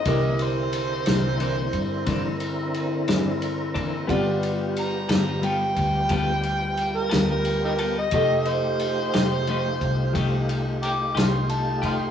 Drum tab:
RD |xxxxxxxxxxxx|xxxxxxxxxxxx|xxxxxxxxxxxx|
SD |---o--o--o--|---o--o--o--|---o-----o--|
BD |o----oo----o|o----oo-----|o----oo----o|